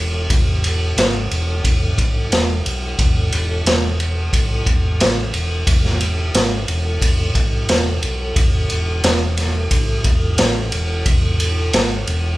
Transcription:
Already playing: fingered electric bass E1
0.30 fingered electric bass E1, kick, ride
0.64 ride
0.97 fingered electric bass G#1, snare, ride
1.31 fingered electric bass E1, ride
1.65 fingered electric bass E1, kick, ride
1.98 fingered electric bass B1, kick, ride
2.32 fingered electric bass E1, snare, ride
2.65 fingered electric bass B1, ride
2.99 fingered electric bass E1, kick, ride
3.32 fingered electric bass E1, ride
3.66 fingered electric bass E1, snare, ride
4.00 ride
4.33 fingered electric bass B1, kick, ride
4.66 fingered electric bass E1, kick, ride
5.00 fingered electric bass A1, snare, ride
5.34 fingered electric bass E1, ride
5.67 fingered electric bass E1, kick, ride
5.85 snare
6.01 ride
6.34 fingered electric bass G#1, snare, ride
6.68 fingered electric bass E1, ride
7.02 fingered electric bass E1, kick, ride
7.35 fingered electric bass B1, kick, ride
7.69 fingered electric bass E1, snare, ride
8.03 fingered electric bass B1, ride
8.36 fingered electric bass E1, kick, ride
8.70 fingered electric bass E1, ride
9.04 fingered electric bass E1, snare, ride
9.37 snare, ride
9.71 fingered electric bass B1, kick, ride
10.04 fingered electric bass E1, kick, ride
10.38 fingered electric bass A1, snare, ride
10.72 fingered electric bass E1, ride
11.06 fingered electric bass E1, kick, ride
11.40 ride
11.73 fingered electric bass G#1, snare, ride
12.07 fingered electric bass E1, ride

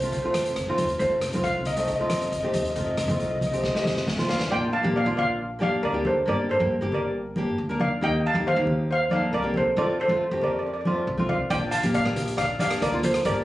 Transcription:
Already playing: upright bass C2
0.02 nylon-string guitar A3 C4 F4, closed hi-hat
0.07 steel pan C5
0.12 steel pan C5, kick, closed hi-hat
0.22 nylon-string guitar A3 C4 F4, steel pan C5
0.29 steel pan C5
0.34 upright bass F1, steel pan C5, cross-stick, closed hi-hat, high conga
0.44 steel pan C5, closed hi-hat
0.56 kick, cross-stick, closed hi-hat
0.67 upright bass F1, nylon-string guitar A3 C4 F4
0.77 upright bass D#2, closed hi-hat, high conga, low conga
0.89 closed hi-hat
0.99 upright bass F1, nylon-string guitar A3 C4 F4, steel pan C5, kick, closed hi-hat
1.21 upright bass F1, cross-stick, closed hi-hat
1.33 upright bass C2, nylon-string guitar A3 C4 F4, closed hi-hat, high conga
1.44 steel pan F5, kick, closed hi-hat
1.65 steel pan D#5, closed hi-hat, low conga
1.73 nylon-string guitar A3 C4, steel pan D#5, closed hi-hat
1.78 nylon-string guitar D#4, steel pan D#5
1.88 steel pan D#5, kick, closed hi-hat
1.96 nylon-string guitar A3, steel pan D#5
2.00 nylon-string guitar C4 F4, steel pan D#5
2.10 upright bass F1, steel pan D#5, cross-stick, closed hi-hat, high conga
2.17 steel pan D#5
2.21 steel pan D#5, closed hi-hat
2.32 steel pan D#5, kick, closed hi-hat
2.41 upright bass F1, nylon-string guitar A3 C4 G4, steel pan D#5
2.48 steel pan D#5
2.53 upright bass D#2, steel pan D#5, closed hi-hat, high conga, low conga
2.63 steel pan D#5, closed hi-hat
2.70 steel pan D#5
2.75 upright bass F1, nylon-string guitar A3 C4 F4, steel pan D#5, kick, closed hi-hat
2.86 steel pan D#5
2.95 upright bass F1, steel pan D#5, cross-stick, closed hi-hat
3.01 steel pan D#5
3.08 upright bass C2, nylon-string guitar A3 C4 F4, steel pan D#5, closed hi-hat, high conga, low conga
3.17 steel pan D#5, kick, closed hi-hat
3.24 steel pan D#5
3.31 steel pan D#5
3.37 steel pan D#5, high conga, low conga
3.42 closed hi-hat
3.47 steel pan D#5
3.52 nylon-string guitar A3 C4 G4, steel pan D#5, closed hi-hat
3.61 steel pan D#5, kick, snare
3.69 steel pan D#5
3.74 nylon-string guitar A3 C4 G4, steel pan D#5, snare
3.84 upright bass F1, steel pan D#5, snare, high conga
3.97 snare
4.07 kick, snare, high conga
4.17 upright bass F1, nylon-string guitar A3 C4 F4, snare, high conga
4.29 upright bass F2, steel pan D5 F5, snare, low conga
4.40 snare, low conga
4.50 upright bass A#1, nylon-string guitar A#3 D4 F4, steel pan D5 G5
4.73 steel pan F5 A5
4.83 upright bass A#2, nylon-string guitar A#3 D4 G4, high conga
4.96 steel pan D5 F5
5.05 upright bass A#1, nylon-string guitar A#3 D4 F4
5.17 steel pan D5 F5, low conga
5.59 nylon-string guitar A#3 D4 G4, steel pan D5, high conga
5.63 steel pan F5
5.83 upright bass D2, steel pan A#4 D5
5.92 nylon-string guitar A#3 D4 G4
6.05 steel pan A4 C5, high conga, low conga
6.26 upright bass G1, nylon-string guitar A#3 D4 G4, steel pan A#4 D5
6.49 steel pan A4 C5
6.59 upright bass G2, nylon-string guitar A#3 D4 G4, high conga
6.81 upright bass G1, nylon-string guitar A#3 D4 G4
6.92 steel pan A#4 D5, low conga
7.36 nylon-string guitar A#3 D4 G4, high conga
7.58 upright bass D2
7.69 nylon-string guitar A#3 D4 A#4
7.80 steel pan D5 F5, high conga, low conga
8.01 upright bass D#2, nylon-string guitar A#3 D#4 G4, steel pan D#5 G5
8.26 steel pan F5 A5
8.34 upright bass D#3, nylon-string guitar A#3 D#4 G4, high conga
8.47 steel pan C5 F5
8.55 upright bass D#2, nylon-string guitar A#3 D#4 G4
8.67 low conga
8.91 steel pan C5 F5
9.10 nylon-string guitar A#3 D#4 A4, steel pan D5 F5, high conga
9.33 upright bass C2, steel pan A#4 D5
9.42 nylon-string guitar A#3 D#4 G4
9.54 steel pan A4 C5, high conga, low conga
9.76 upright bass F2, nylon-string guitar A3 C4 F4, steel pan A4 D5
10.00 steel pan A4 C5
10.08 upright bass F3, nylon-string guitar A3 C4 F4, high conga
10.31 upright bass F2, nylon-string guitar A3 C4 G4
10.41 steel pan A#4 D5, low conga
10.52 steel pan D5
10.59 steel pan D5
10.66 steel pan D5
10.74 steel pan D5
10.81 steel pan D5
10.85 nylon-string guitar A3 C4 F4, steel pan D5, high conga
10.95 steel pan D5
11.07 upright bass C2
11.17 nylon-string guitar A3 C4 F4, high conga
11.29 steel pan D5 F5, high conga, low conga
11.50 upright bass A#1, nylon-string guitar A#3 D4 F4, steel pan D5 G5, kick, closed hi-hat
11.71 steel pan F5 A5, closed hi-hat
11.83 upright bass A#2, nylon-string guitar A#3 D4 G4, closed hi-hat, high conga
11.94 steel pan D5 F5, kick, closed hi-hat
12.05 upright bass A#1, nylon-string guitar A#3 D4 G4, cross-stick
12.16 closed hi-hat, low conga
12.27 closed hi-hat
12.37 steel pan D5 F5, kick, cross-stick, closed hi-hat
12.59 nylon-string guitar A#3 D4 G4, steel pan D5 F5, closed hi-hat, high conga
12.71 cross-stick, closed hi-hat
12.82 upright bass D2, steel pan A#4 D5, kick, closed hi-hat
12.91 nylon-string guitar A#3 D4 F4
13.03 steel pan A4 C5, closed hi-hat, high conga, low conga
13.14 cross-stick, closed hi-hat
13.25 upright bass G1, nylon-string guitar A#3 D4 G4, steel pan A#4 D5, kick, closed hi-hat

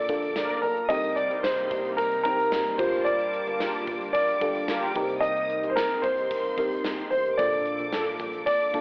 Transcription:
Already playing: fm electric piano A#2 A#3 D4 F4 A4, analog synth pad A#3 A4, grand piano D5, violin section D6
0.08 analog synth bass A#1, fm electric piano A#3 D4 F4 A4, kick, closed hi-hat
0.22 closed hi-hat
0.36 analog synth bass D2, analog polysynth D4 A#4 D5, snare, tambourine
0.49 closed hi-hat
0.61 analog synth bass B1, grand piano A#4, violin section A#5, open hi-hat
0.77 closed hi-hat
0.89 analog synth bass C2, analog synth pad C3 G3 A#3 D#4, fm electric piano C3 C4 D#4 G4 A#4, grand piano D#5, violin section D#6, kick, closed hi-hat
1.04 closed hi-hat
1.15 grand piano D5, violin section D6, closed hi-hat
1.31 analog synth bass C2, closed hi-hat
1.42 grand piano C5, violin section C6, snare, tambourine
1.58 closed hi-hat
1.71 analog synth bass C2, kick, closed hi-hat
1.85 closed hi-hat
1.96 grand piano A#4, violin section A#5, kick, closed hi-hat
2.12 closed hi-hat
2.23 analog synth bass C2, fm electric piano C4 D#4 G4 A#4, grand piano A#4, violin section A#5, kick, closed hi-hat
2.39 closed hi-hat
2.52 analog synth bass D#2, snare, tambourine
2.66 closed hi-hat
2.77 analog synth bass G1, fm electric piano G2 D4 F4 G4 A#4, analog synth pad G3 A#3 F4 A5, grand piano C5, violin section C6, kick, crash
2.93 closed hi-hat
3.04 grand piano D5, violin section D6, closed hi-hat
3.20 closed hi-hat
3.33 closed hi-hat
3.47 analog synth bass G1, closed hi-hat
3.60 analog polysynth F4 G4 A#4, snare, tambourine
3.74 closed hi-hat
3.87 analog synth bass G1, kick, closed hi-hat
4.01 closed hi-hat
4.12 grand piano D5, violin section D6, kick, closed hi-hat
4.28 closed hi-hat
4.41 analog synth bass G1, fm electric piano D4 F4 G4 A4, kick, closed hi-hat
4.55 closed hi-hat
4.68 analog synth bass G1, analog polysynth F4 G4 A#4, snare, tambourine
4.82 closed hi-hat
4.95 analog synth bass C2, fm electric piano C3 C4 D#4 G4 A#4, analog synth pad C3 A#3 D#4, kick, open hi-hat
5.09 closed hi-hat
5.20 grand piano D#5, violin section D#6, closed hi-hat
5.36 closed hi-hat
5.50 closed hi-hat
5.63 analog synth bass C2, closed hi-hat
5.68 grand piano C5, violin section C6
5.74 grand piano A#4, violin section A#5, snare, tambourine
5.90 closed hi-hat
6.01 analog synth bass C2, grand piano C5, violin section C6, kick, closed hi-hat
6.17 closed hi-hat
6.31 kick, closed hi-hat
6.44 closed hi-hat
6.57 analog synth bass C2, fm electric piano C4 D#4 G4 A#4, kick, closed hi-hat
6.71 closed hi-hat
6.84 analog synth bass C2, snare, tambourine
6.98 closed hi-hat
7.09 analog synth bass A1, grand piano C5, violin section C6, open hi-hat
7.25 closed hi-hat
7.37 analog synth bass A#1, fm electric piano A#2 A#3 D4 F4 A4, analog synth pad A4, grand piano D5, violin section D6, kick, closed hi-hat
7.52 closed hi-hat
7.66 closed hi-hat
7.79 analog synth bass A#1, closed hi-hat
7.92 analog polysynth D4 F4 A4, snare, tambourine
8.06 closed hi-hat
8.19 analog synth bass A#1, kick, closed hi-hat
8.33 closed hi-hat
8.44 grand piano D5, violin section D6, kick, closed hi-hat
8.60 closed hi-hat
8.73 analog synth bass A#1, fm electric piano A#3 D4 F4 A4, kick, closed hi-hat

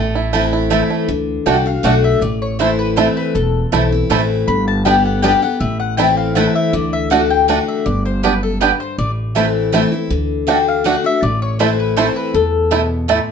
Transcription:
Already playing: upright bass A1, steel-string acoustic guitar A2, five-string banjo A3, resonator guitar played with a steel bar A4
0.15 five-string banjo E4
0.33 steel-string acoustic guitar E3 A3 C4 E4, mandolin A3 E4 C5 A5, five-string banjo A3
0.53 five-string banjo E4
0.70 steel-string acoustic guitar E3 A3 C4 E4, mandolin A3 E4 C5 A5, five-string banjo E4
0.90 five-string banjo A3
1.08 upright bass D2, steel-string acoustic guitar D3
1.46 upright bass C2, steel-string acoustic guitar D3 A3 D4 F#4, mandolin A3 F#4 D5 F#5 G5, five-string banjo A3 D4 F#4
1.66 steel-string acoustic guitar D4 F#4, mandolin F5
1.83 upright bass B1, steel-string acoustic guitar D3 A3 D4 F#4, mandolin A3 F#4 D5 F#5, five-string banjo A3 D4 F#4
2.04 mandolin E5
2.21 upright bass A1, steel-string acoustic guitar A2, mandolin D5
2.42 mandolin C#5
2.59 steel-string acoustic guitar E3 A3 C4 E4, mandolin A3 E4 C5 A5, five-string banjo A3 E4
2.79 mandolin B4
2.96 steel-string acoustic guitar E3 A3 C4 E4, mandolin A3 E4 C5 A5, five-string banjo A3 E4
3.17 mandolin B4
3.35 upright bass E1, steel-string acoustic guitar E2, mandolin A4
3.72 upright bass B1, steel-string acoustic guitar E3 A3 C4 E4, mandolin A3 E4 C5 A5, five-string banjo A3 E4
3.92 steel-string acoustic guitar C4 E4
4.10 upright bass A1, steel-string acoustic guitar E3 A3 C4 E4, mandolin A3 E4 C5 A5, five-string banjo A3 E4
4.48 upright bass G1, steel-string acoustic guitar G2, mandolin B5
4.68 mandolin A5
4.85 steel-string acoustic guitar D3 G3 B3 G4, mandolin B3 G4 D5 G5, five-string banjo B3 D4 G4
5.05 mandolin F#5
5.22 steel-string acoustic guitar D3 G3 B3 G4, mandolin B3 G4 D5 G5, five-string banjo B3 D4 G4
5.42 steel-string acoustic guitar B3 G4, mandolin F#5
5.60 upright bass A1, steel-string acoustic guitar A2, mandolin E5
5.80 mandolin F#5
5.97 steel-string acoustic guitar E3 A3 C4 E4, mandolin A3 E4 C5 G5 A5, five-string banjo A3 E4
6.17 mandolin F5
6.35 steel-string acoustic guitar E3 A3 C4 E4, mandolin A3 E4 C5 F#5 A5, five-string banjo A3 E4
6.55 mandolin E5
6.73 upright bass D2, steel-string acoustic guitar D3, mandolin D5
6.93 mandolin E5
7.10 steel-string acoustic guitar D3 A3 D4 F#4, mandolin A3 F#4 D5 F#5, five-string banjo A3 D4 F#4
7.30 mandolin G5
7.48 steel-string acoustic guitar D3 A3 D4 F#4, mandolin A3 F#4 D5 F#5, five-string banjo A3 D4 F#4
7.68 mandolin E5
7.86 upright bass G1, steel-string acoustic guitar G2, mandolin D5
8.05 mandolin C5
8.23 steel-string acoustic guitar F#2, mandolin B3 G4 B4 D5 G5, five-string banjo B3 D4 G4
8.43 mandolin A4
8.61 steel-string acoustic guitar G2, mandolin B3 G4 B4 D5 G5, five-string banjo B3 D4 G4
8.80 mandolin C5
8.98 upright bass A1, steel-string acoustic guitar A2, mandolin D5
9.35 steel-string acoustic guitar E3 A3 C4 E4, mandolin A3 E4 C5 A5, five-string banjo A3 E4
9.72 steel-string acoustic guitar E3 A3 C4 E4, mandolin A3 E4 C5 A5, five-string banjo A3 E4
9.92 steel-string acoustic guitar C4 E4
10.10 upright bass D2, steel-string acoustic guitar D3
10.47 steel-string acoustic guitar D3 A3 D4 F#4, mandolin A3 F#4 D5 F#5 G5, five-string banjo A3 D4 F#4
10.68 mandolin F5
10.84 steel-string acoustic guitar D3 A3 D4 F#4, mandolin A3 F#4 D5 F#5, five-string banjo A3 D4 F#4
11.04 steel-string acoustic guitar D4 F#4, mandolin E5
11.23 upright bass A1, steel-string acoustic guitar A2, mandolin D5
11.42 mandolin C#5
11.59 steel-string acoustic guitar E3 A3 C4 E4, mandolin A3 E4 C5 A5, five-string banjo A3 E4
11.80 mandolin B4
11.97 steel-string acoustic guitar E3 A3 C4 E4, mandolin A3 E4 C5 A5, five-string banjo A3 E4
12.16 mandolin B4
12.34 upright bass E2, steel-string acoustic guitar E2, mandolin A4
12.71 steel-string acoustic guitar B2, mandolin A3 E4 C5 A5, five-string banjo A3 E4
13.08 steel-string acoustic guitar A2, mandolin A3 E4 C5 A5, five-string banjo A3 E4

